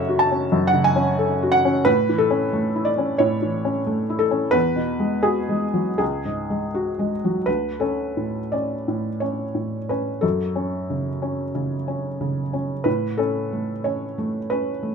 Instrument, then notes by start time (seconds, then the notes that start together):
felt piano
Already playing: F#2 C#3 C#4 A4 E5 F#5
0.09 F#4
0.19 A5
0.31 C#4
0.52 F#2
0.67 F#5
0.73 C#3
0.84 G#5
0.96 C#4
1.19 A4
1.42 F#4
1.52 F#5
1.65 C#4
1.85 A2 B4
2.09 E3
2.18 A4
2.30 C#4
2.53 A3
2.76 E4
2.85 D5
2.98 C#4
3.18 A2 C#5
3.42 E3
3.65 C#4
3.86 A3
4.10 E4
4.19 A4
4.31 C#4
4.51 E2 B4
4.76 B2
4.99 G#3
5.23 F#4 G#4
5.49 G#3
5.74 F#3
5.98 C#2 G#4
6.25 G#2
6.50 G#3
6.75 F#4
6.99 G#3
7.25 F#3
7.46 D2 B4
7.80 C#4 A4
8.17 A2
8.52 C#4 D5
8.88 A2
9.20 C#4 C#5
9.55 A2
9.89 C#4 B4
10.21 F#2 A4
10.56 C#4
10.90 C#3
11.22 C#4
11.55 C#3
11.88 C#4
12.21 C#3
12.53 C#4
12.84 A2 B4
13.17 C#4 A4
13.53 A3
13.84 C#4 C#5
14.18 A3
14.50 C#4 B4
14.83 A3